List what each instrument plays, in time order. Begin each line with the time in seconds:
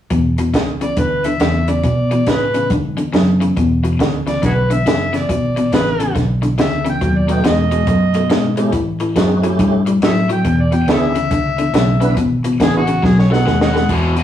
0.10 overdriven electric guitar E2 B2, fingered electric bass E2, kick, closed hi-hat
0.38 overdriven electric guitar E2 B2, closed hi-hat
0.54 fingered electric bass C#2, overdriven electric guitar E2 C#3, kick, snare, closed hi-hat
0.81 overdriven electric guitar E2 C#3, harmonica D5, closed hi-hat
0.97 fingered electric bass D2, overdriven electric guitar E2 D3, harmonica B4, kick, closed hi-hat
1.24 overdriven electric guitar E2 D3, harmonica E5, closed hi-hat
1.40 fingered electric bass E2, overdriven electric guitar E2 C#3, snare, closed hi-hat
1.68 overdriven electric guitar E2 C#3, harmonica D5, closed hi-hat
1.83 overdriven electric guitar E2 B2, fingered electric bass B2, kick, closed hi-hat
2.11 overdriven electric guitar E2 B2, closed hi-hat
2.27 overdriven electric guitar E2 C#3, fingered electric bass A2, harmonica B4, kick, snare, closed hi-hat
2.54 overdriven electric guitar E2 C#3, closed hi-hat
2.70 overdriven electric guitar E2 D3, fingered electric bass G#2, kick, closed hi-hat
2.97 overdriven electric guitar E2 D3, muted fingered electric bass stroke, closed hi-hat
3.13 overdriven electric guitar E2 C#3, fingered electric bass F#2, snare, closed hi-hat
3.40 overdriven electric guitar E2 C#3, closed hi-hat
3.57 overdriven electric guitar E2 B2, fingered electric bass E2, kick, closed hi-hat
3.84 overdriven electric guitar E2 B2, closed hi-hat
3.99 fingered electric bass D2, overdriven electric guitar E2 C#3, kick, snare, closed hi-hat
4.27 overdriven electric guitar E2 C#3, harmonica D5, snare, closed hi-hat
4.42 fingered electric bass B1, overdriven electric guitar E2 D3, harmonica F#4 G#4 B4, kick, closed hi-hat
4.70 overdriven electric guitar E2 D3, harmonica E5, closed hi-hat
4.86 fingered electric bass F#1, overdriven electric guitar E2 C#3, snare, closed hi-hat
5.13 overdriven electric guitar E2 C#3, harmonica D5, snare, closed hi-hat
5.29 fingered electric bass G#1, overdriven electric guitar E2 B2, kick, closed hi-hat
5.56 overdriven electric guitar E2 B2, closed hi-hat
5.72 fingered electric bass A1, overdriven electric guitar E2 C#3, harmonica B4, kick, snare, closed hi-hat
6.00 overdriven electric guitar E2 C#3, closed hi-hat
6.15 fingered electric bass B1, overdriven electric guitar E2 D3, kick, snare, closed hi-hat
6.42 overdriven electric guitar E2 D3, closed hi-hat
6.58 fingered electric bass D2, overdriven electric guitar E2 C#3, harmonica E5, snare, closed hi-hat
6.85 overdriven electric guitar E2 C#3, closed hi-hat
6.90 harmonica G5
7.01 fingered electric bass D#2, overdriven electric guitar B2 F#3, kick, closed hi-hat
7.18 harmonica D5
7.28 overdriven electric guitar B2 F#3, tonewheel organ A3 B3 D#4 F#4, closed hi-hat
7.33 harmonica G5
7.44 fingered electric bass E2, overdriven electric guitar B2 G#3, harmonica D#5, kick, snare, closed hi-hat
7.71 overdriven electric guitar B2 G#3, closed hi-hat
7.87 fingered electric bass F#2, overdriven electric guitar B2 A3, kick, closed hi-hat
8.14 overdriven electric guitar B2 A3, closed hi-hat
8.30 fingered electric bass G#2, overdriven electric guitar B2 G#3, snare, closed hi-hat
8.57 overdriven electric guitar B2 G#3, tonewheel organ A3 C#4 E4 G4, closed hi-hat
8.73 overdriven electric guitar A2 E3, fingered electric bass A2, kick, closed hi-hat
9.00 overdriven electric guitar A2 E3, closed hi-hat
9.15 fingered electric bass F#2, overdriven electric guitar A2 F#3, tonewheel organ G#3 C4 D#4 F#4, kick, snare, closed hi-hat
9.42 overdriven electric guitar A2 F#3, tonewheel organ A3 C#4 E4 G4, closed hi-hat
9.59 fingered electric bass G2, overdriven electric guitar A2 G3, kick, closed hi-hat
9.86 overdriven electric guitar A2 G3, closed hi-hat
10.02 overdriven electric guitar A2 F#3, fingered electric bass A2, harmonica A4 C#5 E5, snare, closed hi-hat
10.29 overdriven electric guitar A2 F#3, harmonica G5, closed hi-hat
10.45 overdriven electric guitar E2 B2, fingered electric bass E2, kick, closed hi-hat
10.61 harmonica D5
10.72 overdriven electric guitar E2 B2, harmonica G5, closed hi-hat
10.87 fingered electric bass D2, overdriven electric guitar E2 C#3, tonewheel organ B3 D4 E4 G#4, harmonica A4 C#5 E5, kick, snare, closed hi-hat
11.15 overdriven electric guitar E2 C#3, closed hi-hat
11.31 fingered electric bass C#2, overdriven electric guitar E2 D3, kick, closed hi-hat
11.58 overdriven electric guitar E2 D3, closed hi-hat
11.74 fingered electric bass B1, overdriven electric guitar E2 C#3, snare, closed hi-hat
12.00 overdriven electric guitar E2 C#3, tonewheel organ B3 D4 E4 B4, closed hi-hat
12.17 fingered electric bass G#1, overdriven electric guitar E2 B2, kick, closed hi-hat
12.44 overdriven electric guitar E2 B2, closed hi-hat
12.60 fingered electric bass A1, overdriven electric guitar E2 C#3, tonewheel organ B3 D4 E4 G#4, harmonica G#4, kick, snare, closed hi-hat
12.77 harmonica F#4
12.87 overdriven electric guitar E2 C#3, closed hi-hat
13.03 fingered electric bass B1, overdriven electric guitar B2 F#3, harmonica G#4, kick, snare
13.19 harmonica C#5, snare
13.30 overdriven electric guitar B2 A3, tonewheel organ B3 D#4 F#4 A4, harmonica F#5, snare
13.46 fingered electric bass D#2, overdriven electric guitar B2 G#3, snare
13.61 harmonica C#5 D#5 F#5, snare
13.74 overdriven electric guitar B2 G#3, snare
13.89 fingered electric bass E2, overdriven electric guitar E2 B2, kick, crash
14.16 overdriven electric guitar E2 B2, closed hi-hat